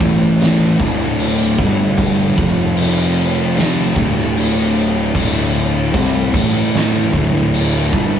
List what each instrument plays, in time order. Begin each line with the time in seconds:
Already playing: synth drone A3
0.00 picked electric bass A1, distorted electric guitar A2 E3 A3, kick, crash
0.41 snare, crash
0.79 picked electric bass D1, distorted electric guitar D2 A2 D3, kick, crash
1.01 snare
1.19 crash
1.59 picked electric bass G1, distorted electric guitar G2 D3 G3, kick, crash
1.98 kick, crash
2.36 picked electric bass F1, distorted electric guitar F2 C3 F3, synth drone F3 C4 G4, kick, crash
2.77 crash
3.17 crash
3.57 snare, crash
3.96 picked electric bass D1, distorted electric guitar D2 A2 D3, synth drone D3 A3 E4, kick, crash
4.19 snare
4.37 crash
4.76 crash
5.14 picked electric bass D1, distorted electric guitar D2 A2 D3, kick, crash
5.55 crash
5.93 picked electric bass C2, distorted electric guitar C3 G3 C4, kick, crash
6.33 picked electric bass A1, distorted electric guitar A2 E3 A3, kick, crash
6.74 snare, crash
7.13 picked electric bass D1, distorted electric guitar D2 A2 D3, synth drone D3, kick, crash
7.35 snare
7.54 crash
7.92 picked electric bass G1, distorted electric guitar G2 D3 G3, kick, crash